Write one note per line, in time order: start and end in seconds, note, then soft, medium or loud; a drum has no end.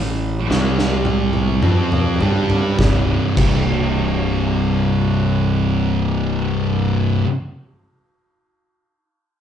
0.00 0.46 A1 medium
0.00 0.37 A2 medium
0.00 0.37 E3 medium
0.47 1.59 C2 loud
0.47 1.60 C3 medium
0.47 1.60 G3 medium
0.47 1.61 C4 loud
0.47 snare medium
0.79 snare medium
1.05 high tom medium
1.33 high tom medium
1.62 2.17 F2 medium
1.62 2.18 F3 medium
1.62 2.18 C4 medium
1.62 2.19 F4 loud
1.62 mid tom medium
1.92 mid tom medium
2.20 2.75 G2 loud
2.20 2.77 G3 medium
2.20 2.77 D4 medium
2.20 2.77 G4 loud
2.20 floor tom medium
2.50 floor tom medium
2.78 3.12 C1 medium
2.78 3.35 C2 medium
2.78 3.37 G2 loud
2.78 kick loud
2.78 snare medium
2.82 3.39 C3 loud
3.35 7.20 C1 medium
3.35 7.22 C2 medium
3.35 7.24 G2 loud
3.35 7.26 C3 loud
3.35 kick loud
3.35 crash medium